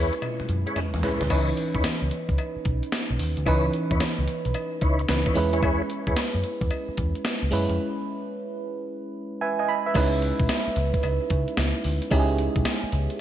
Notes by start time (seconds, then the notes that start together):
Already playing: G#3 C#4 E4 G#4 B4 C#5
0.13 closed hi-hat
0.22 closed hi-hat, high tom, cowbell
0.40 muted picked electric bass stroke, high tom
0.49 F#2, closed hi-hat
0.66 E4 G#4 B4 C#5, closed hi-hat
0.76 muted picked electric bass stroke, closed hi-hat, mid tom, cowbell
0.94 E2, mid tom
1.03 G#3 C#4 E4 G#4 B4 C#5, floor tom, open hi-hat
1.21 D2, closed hi-hat, floor tom
1.29 C#2 E3 C#4 D#4 E4 B4 C#5, kick, closed hi-hat, crash, cowbell
1.57 closed hi-hat
1.75 E2 D#4 E4 B4 C#5, kick, closed hi-hat
1.84 muted picked electric bass stroke, snare, closed hi-hat, cowbell
2.02 C#2
2.11 closed hi-hat
2.29 C#2, kick, closed hi-hat
2.38 closed hi-hat, cowbell
2.56 muted picked electric bass stroke
2.65 B1, kick, closed hi-hat
2.83 closed hi-hat
2.92 snare, closed hi-hat, cowbell
3.11 B1
3.19 D#2, open hi-hat
3.37 D2, closed hi-hat
3.46 C#2 E3 C#4 D#4 E4 B4 C#5, kick, closed hi-hat, cowbell
3.73 closed hi-hat
3.91 E2 D#4 E4 B4 C#5, kick, closed hi-hat
4.00 muted picked electric bass stroke, snare, closed hi-hat, cowbell
4.19 C#2
4.27 closed hi-hat
4.45 B1, closed hi-hat
4.54 closed hi-hat, cowbell
4.81 C#2 D#4 E4 B4 C#5, kick, closed hi-hat
4.99 closed hi-hat
5.08 C#2 E3 C#4 D#4 B4, snare, closed hi-hat, cowbell
5.26 D#4 E4 B4 C#5, kick
5.35 E2 G#3 C#4 E4 B4, open hi-hat
5.53 E4 G#4 B4 C#5, closed hi-hat
5.62 E4 G#4 B4 C#5, kick, closed hi-hat, cowbell
5.90 closed hi-hat
6.07 E2 E4 G#4 B4 C#5, kick, closed hi-hat
6.17 muted picked electric bass stroke, snare, closed hi-hat, cowbell
6.35 F#2
6.44 closed hi-hat
6.61 E2, kick, closed hi-hat
6.71 closed hi-hat, cowbell
6.89 muted picked electric bass stroke
6.97 E2, kick, closed hi-hat
7.15 closed hi-hat
7.25 snare, closed hi-hat, cowbell
7.43 C#2
7.51 F#2 G#3 C#4 E4 B4, open hi-hat
7.69 F2, closed hi-hat
9.41 B4 E5 G#5
9.59 D#5 G#5
9.68 B5
9.86 B4 E5
9.94 C#2 G#3 C#4 D#4 E4 B4, kick, closed hi-hat, crash, tambourine, cowbell
10.22 closed hi-hat, tambourine
10.40 B1, kick, closed hi-hat
10.49 snare, closed hi-hat, tambourine, cowbell
10.67 muted picked electric bass stroke
10.76 C#2, closed hi-hat, tambourine
10.94 kick, closed hi-hat
11.03 C#2, closed hi-hat, tambourine, cowbell
11.30 C#3, kick, closed hi-hat, tambourine
11.48 closed hi-hat
11.57 C#2, snare, closed hi-hat, tambourine, cowbell
11.84 D2, open hi-hat
12.02 closed hi-hat
12.10 C#2 G#3 C#4 D#4 E4 G4, kick, closed hi-hat, tambourine, cowbell
12.19 G#4
12.38 closed hi-hat, tambourine
12.56 B1, kick, closed hi-hat
12.65 snare, closed hi-hat, tambourine, cowbell
12.83 muted picked electric bass stroke
12.92 C#2, closed hi-hat, tambourine
13.10 closed hi-hat